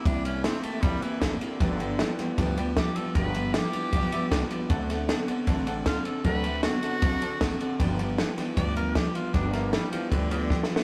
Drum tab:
RD |x--x--x--x--x--x--x--x--|x--x--x--x--x--x--x--x--|x--x--x--x--x--x--x--x--|x--x--x--x--x--x--x--x--|
SD |------o-----o-----o-----|o-----o--o--o-----o-----|o-----o-----------o-----|---o--o-----o-----o-----|
BD |o-----------o-----o-----|o-----------o-----o-----|o-----------o-----o-----|o-----------o-----o-----|

RD |x--x--x--x--x--x--x--x--|x--x--x--x--x--x--x--x--|x--x--x--x--x--x--------|
SD |------o-----o-----o-----|o-----o--o--------o-----|o--o--o-----------o-o-o-|
BD |o-----------o-----o-----|o-----------o-----o-----|o-----------o-----o-----|